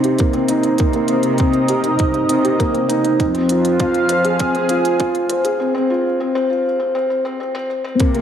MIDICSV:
0, 0, Header, 1, 5, 480
1, 0, Start_track
1, 0, Tempo, 600000
1, 638, Time_signature, 4, 2, 24, 8
1, 6571, End_track
2, 0, Start_track
2, 0, Title_t, "Analog synth pad"
2, 0, Program_c, 0, 89
2, 0, Note_on_c, 0, 48, 68
2, 0, Note_on_c, 0, 60, 83
2, 0, Note_on_c, 0, 70, 70
2, 325, Note_on_c, 0, 75, 78
2, 2551, Note_on_c, 0, 53, 86
2, 2556, Note_off_c, 0, 48, 0
2, 2858, Note_on_c, 0, 77, 84
2, 3309, Note_on_c, 0, 68, 78
2, 3413, Note_off_c, 0, 75, 0
2, 3482, Note_off_c, 0, 70, 0
2, 4475, Note_off_c, 0, 53, 0
2, 4476, Note_off_c, 0, 77, 0
2, 4478, Note_off_c, 0, 68, 0
2, 4480, Note_off_c, 0, 60, 0
2, 6420, Note_on_c, 0, 48, 73
2, 6571, Note_off_c, 0, 48, 0
2, 6571, End_track
3, 0, Start_track
3, 0, Title_t, "Felt piano"
3, 0, Program_c, 1, 0
3, 0, Control_c, 1, 64, 127
3, 0, Note_on_c, 1, 58, 77
3, 0, Note_on_c, 1, 60, 66
3, 0, Note_on_c, 1, 63, 64
3, 0, Note_on_c, 1, 67, 72
3, 35, Note_off_c, 1, 67, 0
3, 35, Note_on_c, 1, 67, 61
3, 150, Note_off_c, 1, 58, 0
3, 150, Note_on_c, 1, 58, 85
3, 151, Note_off_c, 1, 67, 0
3, 268, Note_off_c, 1, 60, 0
3, 268, Note_on_c, 1, 60, 95
3, 269, Note_off_c, 1, 58, 0
3, 387, Note_off_c, 1, 60, 0
3, 392, Note_off_c, 1, 63, 0
3, 392, Note_on_c, 1, 63, 90
3, 500, Note_off_c, 1, 63, 0
3, 512, Note_on_c, 1, 63, 64
3, 629, Note_off_c, 1, 63, 0
3, 636, Note_on_c, 1, 58, 74
3, 744, Note_off_c, 1, 58, 0
3, 756, Note_on_c, 1, 58, 85
3, 871, Note_off_c, 1, 58, 0
3, 873, Note_on_c, 1, 60, 68
3, 990, Note_off_c, 1, 60, 0
3, 1113, Note_on_c, 1, 60, 91
3, 1184, Note_off_c, 1, 60, 0
3, 1352, Note_on_c, 1, 67, 67
3, 1424, Note_off_c, 1, 67, 0
3, 1476, Note_on_c, 1, 63, 69
3, 1591, Note_off_c, 1, 63, 0
3, 1718, Note_on_c, 1, 63, 71
3, 1832, Note_off_c, 1, 63, 0
3, 1834, Note_on_c, 1, 60, 70
3, 1950, Note_off_c, 1, 60, 0
3, 1956, Note_on_c, 1, 67, 67
3, 2071, Note_off_c, 1, 67, 0
3, 2072, Note_on_c, 1, 58, 96
3, 2189, Note_off_c, 1, 58, 0
3, 2192, Note_on_c, 1, 60, 88
3, 2309, Note_on_c, 1, 63, 91
3, 2310, Note_off_c, 1, 60, 0
3, 2422, Note_off_c, 1, 63, 0
3, 2434, Note_on_c, 1, 63, 70
3, 2551, Note_off_c, 1, 63, 0
3, 2554, Note_on_c, 1, 60, 69
3, 2567, Control_c, 1, 64, 0
3, 2664, Note_off_c, 1, 60, 0
3, 2676, Note_on_c, 1, 60, 82
3, 2686, Control_c, 1, 64, 127
3, 2791, Note_off_c, 1, 60, 0
3, 2800, Note_on_c, 1, 65, 62
3, 2913, Note_off_c, 1, 65, 0
3, 3040, Note_on_c, 1, 65, 90
3, 3108, Note_off_c, 1, 65, 0
3, 3277, Note_on_c, 1, 72, 69
3, 3346, Note_off_c, 1, 72, 0
3, 3397, Note_on_c, 1, 68, 67
3, 3499, Note_off_c, 1, 68, 0
3, 3522, Note_on_c, 1, 60, 79
3, 3630, Note_off_c, 1, 60, 0
3, 3642, Note_on_c, 1, 60, 88
3, 3754, Note_off_c, 1, 60, 0
3, 3757, Note_on_c, 1, 65, 74
3, 3872, Note_off_c, 1, 65, 0
3, 3995, Note_on_c, 1, 65, 92
3, 4065, Note_off_c, 1, 65, 0
3, 4236, Note_on_c, 1, 72, 69
3, 4306, Note_off_c, 1, 72, 0
3, 4357, Note_on_c, 1, 68, 71
3, 4459, Note_off_c, 1, 68, 0
3, 4478, Note_on_c, 1, 60, 78
3, 4585, Note_off_c, 1, 60, 0
3, 4597, Note_on_c, 1, 60, 89
3, 4712, Note_off_c, 1, 60, 0
3, 4721, Note_on_c, 1, 65, 73
3, 4834, Note_off_c, 1, 65, 0
3, 4962, Note_on_c, 1, 60, 85
3, 5070, Note_off_c, 1, 60, 0
3, 5082, Note_on_c, 1, 60, 103
3, 5194, Note_off_c, 1, 60, 0
3, 5198, Note_on_c, 1, 65, 79
3, 5312, Note_off_c, 1, 65, 0
3, 5437, Note_on_c, 1, 60, 83
3, 5547, Note_off_c, 1, 60, 0
3, 5559, Note_on_c, 1, 60, 102
3, 5660, Note_off_c, 1, 60, 0
3, 5681, Note_on_c, 1, 60, 85
3, 5788, Note_off_c, 1, 60, 0
3, 5800, Note_on_c, 1, 60, 98
3, 5900, Note_off_c, 1, 60, 0
3, 5921, Note_on_c, 1, 60, 86
3, 6026, Note_off_c, 1, 60, 0
3, 6038, Note_on_c, 1, 60, 107
3, 6139, Note_off_c, 1, 60, 0
3, 6160, Note_on_c, 1, 60, 85
3, 6263, Note_off_c, 1, 60, 0
3, 6275, Note_on_c, 1, 60, 107
3, 6378, Note_off_c, 1, 60, 0
3, 6398, Note_on_c, 1, 58, 84
3, 6410, Control_c, 1, 64, 0
3, 6507, Note_off_c, 1, 58, 0
3, 6519, Note_on_c, 1, 58, 90
3, 6533, Control_c, 1, 64, 127
3, 6571, Note_off_c, 1, 58, 0
3, 6571, End_track
4, 0, Start_track
4, 0, Title_t, "Cello section"
4, 0, Program_c, 2, 48
4, 0, Note_on_c, 2, 48, 88
4, 589, Note_off_c, 2, 48, 0
4, 638, Note_on_c, 2, 48, 94
4, 1548, Note_off_c, 2, 48, 0
4, 1597, Note_on_c, 2, 43, 77
4, 1775, Note_off_c, 2, 43, 0
4, 1831, Note_on_c, 2, 48, 78
4, 2012, Note_off_c, 2, 48, 0
4, 2559, Note_on_c, 2, 41, 101
4, 4428, Note_off_c, 2, 41, 0
4, 6404, Note_on_c, 2, 48, 101
4, 6571, Note_off_c, 2, 48, 0
4, 6571, End_track
5, 0, Start_track
5, 0, Title_t, "Drums"
5, 31, Note_on_c, 9, 42, 28
5, 111, Note_off_c, 9, 42, 0
5, 148, Note_on_c, 9, 42, 38
5, 160, Note_on_c, 9, 36, 96
5, 228, Note_off_c, 9, 42, 0
5, 240, Note_off_c, 9, 36, 0
5, 267, Note_on_c, 9, 42, 17
5, 347, Note_off_c, 9, 42, 0
5, 388, Note_on_c, 9, 42, 66
5, 468, Note_off_c, 9, 42, 0
5, 508, Note_on_c, 9, 42, 27
5, 588, Note_off_c, 9, 42, 0
5, 626, Note_on_c, 9, 42, 36
5, 639, Note_on_c, 9, 36, 101
5, 706, Note_off_c, 9, 42, 0
5, 719, Note_off_c, 9, 36, 0
5, 747, Note_on_c, 9, 42, 20
5, 827, Note_off_c, 9, 42, 0
5, 865, Note_on_c, 9, 42, 62
5, 945, Note_off_c, 9, 42, 0
5, 984, Note_on_c, 9, 42, 30
5, 1064, Note_off_c, 9, 42, 0
5, 1105, Note_on_c, 9, 42, 36
5, 1119, Note_on_c, 9, 36, 99
5, 1185, Note_off_c, 9, 42, 0
5, 1199, Note_off_c, 9, 36, 0
5, 1228, Note_on_c, 9, 42, 19
5, 1308, Note_off_c, 9, 42, 0
5, 1348, Note_on_c, 9, 42, 72
5, 1428, Note_off_c, 9, 42, 0
5, 1470, Note_on_c, 9, 42, 28
5, 1550, Note_off_c, 9, 42, 0
5, 1591, Note_on_c, 9, 42, 41
5, 1598, Note_on_c, 9, 36, 105
5, 1671, Note_off_c, 9, 42, 0
5, 1678, Note_off_c, 9, 36, 0
5, 1712, Note_on_c, 9, 42, 19
5, 1792, Note_off_c, 9, 42, 0
5, 1834, Note_on_c, 9, 42, 70
5, 1914, Note_off_c, 9, 42, 0
5, 1958, Note_on_c, 9, 42, 30
5, 2038, Note_off_c, 9, 42, 0
5, 2078, Note_on_c, 9, 36, 97
5, 2079, Note_on_c, 9, 42, 42
5, 2158, Note_off_c, 9, 36, 0
5, 2159, Note_off_c, 9, 42, 0
5, 2196, Note_on_c, 9, 42, 18
5, 2276, Note_off_c, 9, 42, 0
5, 2317, Note_on_c, 9, 42, 69
5, 2397, Note_off_c, 9, 42, 0
5, 2436, Note_on_c, 9, 42, 29
5, 2516, Note_off_c, 9, 42, 0
5, 2558, Note_on_c, 9, 36, 103
5, 2558, Note_on_c, 9, 42, 41
5, 2638, Note_off_c, 9, 36, 0
5, 2638, Note_off_c, 9, 42, 0
5, 2677, Note_on_c, 9, 42, 19
5, 2757, Note_off_c, 9, 42, 0
5, 2795, Note_on_c, 9, 42, 67
5, 2875, Note_off_c, 9, 42, 0
5, 2918, Note_on_c, 9, 42, 32
5, 2998, Note_off_c, 9, 42, 0
5, 3037, Note_on_c, 9, 42, 38
5, 3039, Note_on_c, 9, 36, 107
5, 3117, Note_off_c, 9, 42, 0
5, 3119, Note_off_c, 9, 36, 0
5, 3156, Note_on_c, 9, 42, 22
5, 3236, Note_off_c, 9, 42, 0
5, 3273, Note_on_c, 9, 42, 81
5, 3353, Note_off_c, 9, 42, 0
5, 3397, Note_on_c, 9, 42, 30
5, 3477, Note_off_c, 9, 42, 0
5, 3516, Note_on_c, 9, 42, 42
5, 3521, Note_on_c, 9, 36, 106
5, 3596, Note_off_c, 9, 42, 0
5, 3601, Note_off_c, 9, 36, 0
5, 3638, Note_on_c, 9, 42, 21
5, 3718, Note_off_c, 9, 42, 0
5, 3754, Note_on_c, 9, 42, 68
5, 3834, Note_off_c, 9, 42, 0
5, 3880, Note_on_c, 9, 42, 32
5, 3960, Note_off_c, 9, 42, 0
5, 3997, Note_on_c, 9, 42, 44
5, 4001, Note_on_c, 9, 36, 99
5, 4077, Note_off_c, 9, 42, 0
5, 4081, Note_off_c, 9, 36, 0
5, 4118, Note_on_c, 9, 42, 21
5, 4198, Note_off_c, 9, 42, 0
5, 4236, Note_on_c, 9, 42, 74
5, 4316, Note_off_c, 9, 42, 0
5, 4358, Note_on_c, 9, 42, 31
5, 4438, Note_off_c, 9, 42, 0
5, 6397, Note_on_c, 9, 42, 41
5, 6402, Note_on_c, 9, 36, 107
5, 6477, Note_off_c, 9, 42, 0
5, 6482, Note_off_c, 9, 36, 0
5, 6516, Note_on_c, 9, 42, 19
5, 6571, Note_off_c, 9, 42, 0
5, 6571, End_track
0, 0, End_of_file